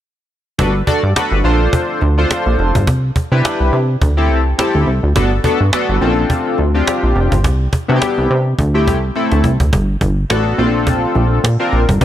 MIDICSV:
0, 0, Header, 1, 4, 480
1, 0, Start_track
1, 0, Key_signature, 1, "major"
1, 0, Tempo, 571429
1, 492, Time_signature, 4, 2, 24, 8
1, 10120, End_track
2, 0, Start_track
2, 0, Title_t, "Analog polysynth"
2, 0, Program_c, 0, 90
2, 490, Note_on_c, 0, 62, 96
2, 493, Note_on_c, 0, 66, 79
2, 495, Note_on_c, 0, 69, 90
2, 498, Note_on_c, 0, 71, 96
2, 608, Note_off_c, 0, 62, 0
2, 611, Note_off_c, 0, 66, 0
2, 613, Note_off_c, 0, 69, 0
2, 615, Note_off_c, 0, 71, 0
2, 730, Note_on_c, 0, 62, 97
2, 733, Note_on_c, 0, 66, 87
2, 735, Note_on_c, 0, 69, 88
2, 738, Note_on_c, 0, 74, 109
2, 848, Note_off_c, 0, 62, 0
2, 850, Note_off_c, 0, 66, 0
2, 853, Note_off_c, 0, 69, 0
2, 856, Note_off_c, 0, 74, 0
2, 972, Note_on_c, 0, 62, 92
2, 974, Note_on_c, 0, 66, 81
2, 977, Note_on_c, 0, 69, 85
2, 979, Note_on_c, 0, 71, 103
2, 1170, Note_off_c, 0, 62, 0
2, 1171, Note_off_c, 0, 66, 0
2, 1172, Note_off_c, 0, 69, 0
2, 1173, Note_off_c, 0, 71, 0
2, 1209, Note_on_c, 0, 62, 93
2, 1211, Note_on_c, 0, 65, 84
2, 1214, Note_on_c, 0, 69, 81
2, 1216, Note_on_c, 0, 72, 101
2, 1691, Note_off_c, 0, 62, 0
2, 1692, Note_off_c, 0, 65, 0
2, 1693, Note_off_c, 0, 69, 0
2, 1694, Note_off_c, 0, 72, 0
2, 1828, Note_on_c, 0, 62, 86
2, 1830, Note_on_c, 0, 65, 80
2, 1833, Note_on_c, 0, 69, 76
2, 1834, Note_on_c, 0, 72, 96
2, 2334, Note_off_c, 0, 62, 0
2, 2335, Note_off_c, 0, 65, 0
2, 2337, Note_off_c, 0, 69, 0
2, 2338, Note_off_c, 0, 72, 0
2, 2784, Note_on_c, 0, 62, 90
2, 2786, Note_on_c, 0, 64, 80
2, 2790, Note_on_c, 0, 67, 81
2, 2791, Note_on_c, 0, 71, 94
2, 3157, Note_off_c, 0, 62, 0
2, 3158, Note_off_c, 0, 64, 0
2, 3160, Note_off_c, 0, 67, 0
2, 3160, Note_off_c, 0, 71, 0
2, 3503, Note_on_c, 0, 60, 93
2, 3505, Note_on_c, 0, 64, 83
2, 3507, Note_on_c, 0, 67, 83
2, 3510, Note_on_c, 0, 69, 92
2, 3690, Note_off_c, 0, 60, 0
2, 3691, Note_off_c, 0, 64, 0
2, 3693, Note_off_c, 0, 67, 0
2, 3694, Note_off_c, 0, 69, 0
2, 3849, Note_on_c, 0, 60, 81
2, 3853, Note_on_c, 0, 64, 77
2, 3855, Note_on_c, 0, 67, 78
2, 3857, Note_on_c, 0, 69, 91
2, 4108, Note_off_c, 0, 60, 0
2, 4110, Note_off_c, 0, 64, 0
2, 4111, Note_off_c, 0, 67, 0
2, 4112, Note_off_c, 0, 69, 0
2, 4330, Note_on_c, 0, 59, 91
2, 4332, Note_on_c, 0, 62, 86
2, 4335, Note_on_c, 0, 66, 81
2, 4337, Note_on_c, 0, 69, 105
2, 4448, Note_off_c, 0, 59, 0
2, 4450, Note_off_c, 0, 62, 0
2, 4453, Note_off_c, 0, 66, 0
2, 4455, Note_off_c, 0, 69, 0
2, 4569, Note_on_c, 0, 59, 91
2, 4571, Note_on_c, 0, 62, 87
2, 4574, Note_on_c, 0, 66, 86
2, 4575, Note_on_c, 0, 69, 107
2, 4686, Note_off_c, 0, 59, 0
2, 4689, Note_off_c, 0, 62, 0
2, 4691, Note_off_c, 0, 66, 0
2, 4693, Note_off_c, 0, 69, 0
2, 4812, Note_on_c, 0, 59, 94
2, 4815, Note_on_c, 0, 62, 87
2, 4816, Note_on_c, 0, 66, 91
2, 4819, Note_on_c, 0, 69, 105
2, 5010, Note_off_c, 0, 59, 0
2, 5011, Note_off_c, 0, 62, 0
2, 5012, Note_off_c, 0, 66, 0
2, 5013, Note_off_c, 0, 69, 0
2, 5049, Note_on_c, 0, 60, 91
2, 5051, Note_on_c, 0, 61, 63
2, 5055, Note_on_c, 0, 65, 80
2, 5056, Note_on_c, 0, 69, 100
2, 5105, Note_on_c, 0, 62, 82
2, 5113, Note_off_c, 0, 61, 0
2, 5531, Note_off_c, 0, 60, 0
2, 5534, Note_off_c, 0, 65, 0
2, 5534, Note_off_c, 0, 69, 0
2, 5559, Note_off_c, 0, 62, 0
2, 5664, Note_on_c, 0, 60, 80
2, 5666, Note_on_c, 0, 62, 75
2, 5669, Note_on_c, 0, 65, 80
2, 5671, Note_on_c, 0, 67, 87
2, 6172, Note_off_c, 0, 60, 0
2, 6174, Note_off_c, 0, 62, 0
2, 6175, Note_off_c, 0, 65, 0
2, 6176, Note_off_c, 0, 67, 0
2, 6621, Note_on_c, 0, 59, 85
2, 6624, Note_on_c, 0, 62, 81
2, 6626, Note_on_c, 0, 64, 77
2, 6627, Note_on_c, 0, 66, 79
2, 6675, Note_off_c, 0, 66, 0
2, 6683, Note_on_c, 0, 67, 103
2, 6996, Note_off_c, 0, 59, 0
2, 6997, Note_off_c, 0, 62, 0
2, 6998, Note_off_c, 0, 64, 0
2, 7026, Note_off_c, 0, 67, 0
2, 7343, Note_on_c, 0, 57, 87
2, 7345, Note_on_c, 0, 60, 77
2, 7347, Note_on_c, 0, 64, 79
2, 7348, Note_on_c, 0, 67, 99
2, 7530, Note_off_c, 0, 57, 0
2, 7532, Note_off_c, 0, 60, 0
2, 7533, Note_off_c, 0, 64, 0
2, 7533, Note_off_c, 0, 67, 0
2, 7689, Note_on_c, 0, 57, 85
2, 7690, Note_on_c, 0, 60, 77
2, 7693, Note_on_c, 0, 64, 81
2, 7696, Note_on_c, 0, 69, 96
2, 7948, Note_off_c, 0, 57, 0
2, 7948, Note_off_c, 0, 60, 0
2, 7950, Note_off_c, 0, 64, 0
2, 7951, Note_off_c, 0, 69, 0
2, 8649, Note_on_c, 0, 59, 81
2, 8649, Note_on_c, 0, 62, 74
2, 8651, Note_on_c, 0, 66, 79
2, 8655, Note_on_c, 0, 69, 98
2, 8878, Note_off_c, 0, 62, 0
2, 8884, Note_off_c, 0, 69, 0
2, 8888, Note_on_c, 0, 60, 91
2, 8888, Note_on_c, 0, 62, 81
2, 8891, Note_off_c, 0, 59, 0
2, 8892, Note_off_c, 0, 66, 0
2, 8892, Note_on_c, 0, 65, 77
2, 8894, Note_on_c, 0, 69, 97
2, 9568, Note_off_c, 0, 60, 0
2, 9568, Note_off_c, 0, 62, 0
2, 9570, Note_off_c, 0, 65, 0
2, 9571, Note_off_c, 0, 69, 0
2, 9739, Note_on_c, 0, 60, 88
2, 9741, Note_on_c, 0, 62, 78
2, 9743, Note_on_c, 0, 65, 80
2, 9745, Note_on_c, 0, 70, 97
2, 9929, Note_off_c, 0, 60, 0
2, 9930, Note_off_c, 0, 62, 0
2, 9931, Note_off_c, 0, 65, 0
2, 9931, Note_off_c, 0, 70, 0
2, 10086, Note_on_c, 0, 62, 81
2, 10088, Note_on_c, 0, 64, 72
2, 10091, Note_on_c, 0, 67, 78
2, 10093, Note_on_c, 0, 71, 87
2, 10120, Note_off_c, 0, 62, 0
2, 10120, Note_off_c, 0, 64, 0
2, 10120, Note_off_c, 0, 67, 0
2, 10120, Note_off_c, 0, 71, 0
2, 10120, End_track
3, 0, Start_track
3, 0, Title_t, "Analog synth bass"
3, 0, Program_c, 1, 38
3, 493, Note_on_c, 1, 31, 93
3, 694, Note_off_c, 1, 31, 0
3, 867, Note_on_c, 1, 43, 94
3, 955, Note_off_c, 1, 43, 0
3, 1105, Note_on_c, 1, 31, 96
3, 1194, Note_off_c, 1, 31, 0
3, 1210, Note_on_c, 1, 34, 103
3, 1412, Note_off_c, 1, 34, 0
3, 1695, Note_on_c, 1, 38, 93
3, 1895, Note_off_c, 1, 38, 0
3, 2069, Note_on_c, 1, 34, 79
3, 2156, Note_off_c, 1, 34, 0
3, 2174, Note_on_c, 1, 29, 98
3, 2286, Note_off_c, 1, 29, 0
3, 2312, Note_on_c, 1, 31, 90
3, 2414, Note_on_c, 1, 36, 92
3, 2426, Note_off_c, 1, 31, 0
3, 2614, Note_off_c, 1, 36, 0
3, 2787, Note_on_c, 1, 48, 96
3, 2875, Note_off_c, 1, 48, 0
3, 3028, Note_on_c, 1, 36, 93
3, 3116, Note_off_c, 1, 36, 0
3, 3130, Note_on_c, 1, 48, 91
3, 3332, Note_off_c, 1, 48, 0
3, 3373, Note_on_c, 1, 38, 103
3, 3613, Note_on_c, 1, 36, 86
3, 3625, Note_off_c, 1, 38, 0
3, 3814, Note_off_c, 1, 36, 0
3, 3988, Note_on_c, 1, 38, 77
3, 4076, Note_off_c, 1, 38, 0
3, 4092, Note_on_c, 1, 36, 87
3, 4205, Note_off_c, 1, 36, 0
3, 4227, Note_on_c, 1, 38, 87
3, 4315, Note_off_c, 1, 38, 0
3, 4332, Note_on_c, 1, 31, 98
3, 4533, Note_off_c, 1, 31, 0
3, 4709, Note_on_c, 1, 43, 95
3, 4797, Note_off_c, 1, 43, 0
3, 4946, Note_on_c, 1, 31, 96
3, 5035, Note_off_c, 1, 31, 0
3, 5054, Note_on_c, 1, 34, 106
3, 5254, Note_off_c, 1, 34, 0
3, 5534, Note_on_c, 1, 38, 96
3, 5734, Note_off_c, 1, 38, 0
3, 5909, Note_on_c, 1, 34, 81
3, 5996, Note_off_c, 1, 34, 0
3, 6011, Note_on_c, 1, 29, 102
3, 6124, Note_off_c, 1, 29, 0
3, 6148, Note_on_c, 1, 31, 89
3, 6251, Note_on_c, 1, 36, 98
3, 6264, Note_off_c, 1, 31, 0
3, 6453, Note_off_c, 1, 36, 0
3, 6631, Note_on_c, 1, 48, 99
3, 6718, Note_off_c, 1, 48, 0
3, 6871, Note_on_c, 1, 36, 99
3, 6958, Note_off_c, 1, 36, 0
3, 6976, Note_on_c, 1, 48, 95
3, 7176, Note_off_c, 1, 48, 0
3, 7212, Note_on_c, 1, 38, 103
3, 7454, Note_on_c, 1, 36, 90
3, 7466, Note_off_c, 1, 38, 0
3, 7654, Note_off_c, 1, 36, 0
3, 7829, Note_on_c, 1, 38, 79
3, 7916, Note_off_c, 1, 38, 0
3, 7935, Note_on_c, 1, 36, 87
3, 8046, Note_off_c, 1, 36, 0
3, 8067, Note_on_c, 1, 38, 84
3, 8155, Note_off_c, 1, 38, 0
3, 8170, Note_on_c, 1, 31, 99
3, 8372, Note_off_c, 1, 31, 0
3, 8409, Note_on_c, 1, 31, 106
3, 8612, Note_off_c, 1, 31, 0
3, 8654, Note_on_c, 1, 33, 97
3, 8854, Note_off_c, 1, 33, 0
3, 8891, Note_on_c, 1, 34, 94
3, 9293, Note_off_c, 1, 34, 0
3, 9369, Note_on_c, 1, 34, 99
3, 9572, Note_off_c, 1, 34, 0
3, 9608, Note_on_c, 1, 46, 90
3, 9723, Note_off_c, 1, 46, 0
3, 9850, Note_on_c, 1, 34, 91
3, 9964, Note_off_c, 1, 34, 0
3, 9986, Note_on_c, 1, 31, 91
3, 10075, Note_off_c, 1, 31, 0
3, 10089, Note_on_c, 1, 36, 107
3, 10120, Note_off_c, 1, 36, 0
3, 10120, End_track
4, 0, Start_track
4, 0, Title_t, "Cajon"
4, 494, Note_on_c, 9, 36, 115
4, 578, Note_off_c, 9, 36, 0
4, 732, Note_on_c, 9, 36, 87
4, 816, Note_off_c, 9, 36, 0
4, 976, Note_on_c, 9, 38, 113
4, 1060, Note_off_c, 9, 38, 0
4, 1217, Note_on_c, 9, 38, 38
4, 1301, Note_off_c, 9, 38, 0
4, 1453, Note_on_c, 9, 36, 101
4, 1537, Note_off_c, 9, 36, 0
4, 1690, Note_on_c, 9, 38, 38
4, 1774, Note_off_c, 9, 38, 0
4, 1937, Note_on_c, 9, 38, 105
4, 2021, Note_off_c, 9, 38, 0
4, 2176, Note_on_c, 9, 38, 44
4, 2260, Note_off_c, 9, 38, 0
4, 2311, Note_on_c, 9, 36, 88
4, 2395, Note_off_c, 9, 36, 0
4, 2414, Note_on_c, 9, 36, 111
4, 2498, Note_off_c, 9, 36, 0
4, 2652, Note_on_c, 9, 36, 93
4, 2736, Note_off_c, 9, 36, 0
4, 2898, Note_on_c, 9, 38, 108
4, 2982, Note_off_c, 9, 38, 0
4, 3137, Note_on_c, 9, 38, 38
4, 3221, Note_off_c, 9, 38, 0
4, 3373, Note_on_c, 9, 36, 94
4, 3457, Note_off_c, 9, 36, 0
4, 3608, Note_on_c, 9, 38, 38
4, 3692, Note_off_c, 9, 38, 0
4, 3854, Note_on_c, 9, 38, 106
4, 3938, Note_off_c, 9, 38, 0
4, 4091, Note_on_c, 9, 38, 46
4, 4175, Note_off_c, 9, 38, 0
4, 4332, Note_on_c, 9, 36, 112
4, 4416, Note_off_c, 9, 36, 0
4, 4570, Note_on_c, 9, 36, 90
4, 4654, Note_off_c, 9, 36, 0
4, 4812, Note_on_c, 9, 38, 116
4, 4896, Note_off_c, 9, 38, 0
4, 5053, Note_on_c, 9, 38, 37
4, 5137, Note_off_c, 9, 38, 0
4, 5291, Note_on_c, 9, 36, 94
4, 5375, Note_off_c, 9, 36, 0
4, 5527, Note_on_c, 9, 38, 39
4, 5611, Note_off_c, 9, 38, 0
4, 5775, Note_on_c, 9, 38, 103
4, 5859, Note_off_c, 9, 38, 0
4, 6011, Note_on_c, 9, 38, 45
4, 6095, Note_off_c, 9, 38, 0
4, 6149, Note_on_c, 9, 36, 90
4, 6233, Note_off_c, 9, 36, 0
4, 6253, Note_on_c, 9, 36, 114
4, 6337, Note_off_c, 9, 36, 0
4, 6491, Note_on_c, 9, 36, 89
4, 6575, Note_off_c, 9, 36, 0
4, 6735, Note_on_c, 9, 38, 111
4, 6819, Note_off_c, 9, 38, 0
4, 7212, Note_on_c, 9, 36, 97
4, 7296, Note_off_c, 9, 36, 0
4, 7455, Note_on_c, 9, 36, 93
4, 7539, Note_off_c, 9, 36, 0
4, 7690, Note_on_c, 9, 38, 55
4, 7774, Note_off_c, 9, 38, 0
4, 7825, Note_on_c, 9, 38, 53
4, 7909, Note_off_c, 9, 38, 0
4, 7928, Note_on_c, 9, 36, 80
4, 8012, Note_off_c, 9, 36, 0
4, 8064, Note_on_c, 9, 36, 81
4, 8148, Note_off_c, 9, 36, 0
4, 8171, Note_on_c, 9, 36, 115
4, 8255, Note_off_c, 9, 36, 0
4, 8409, Note_on_c, 9, 36, 87
4, 8493, Note_off_c, 9, 36, 0
4, 8653, Note_on_c, 9, 38, 116
4, 8737, Note_off_c, 9, 38, 0
4, 8893, Note_on_c, 9, 38, 36
4, 8977, Note_off_c, 9, 38, 0
4, 9129, Note_on_c, 9, 36, 97
4, 9213, Note_off_c, 9, 36, 0
4, 9367, Note_on_c, 9, 38, 38
4, 9451, Note_off_c, 9, 38, 0
4, 9614, Note_on_c, 9, 38, 109
4, 9698, Note_off_c, 9, 38, 0
4, 9850, Note_on_c, 9, 38, 48
4, 9934, Note_off_c, 9, 38, 0
4, 9986, Note_on_c, 9, 36, 93
4, 10070, Note_off_c, 9, 36, 0
4, 10090, Note_on_c, 9, 36, 117
4, 10120, Note_off_c, 9, 36, 0
4, 10120, End_track
0, 0, End_of_file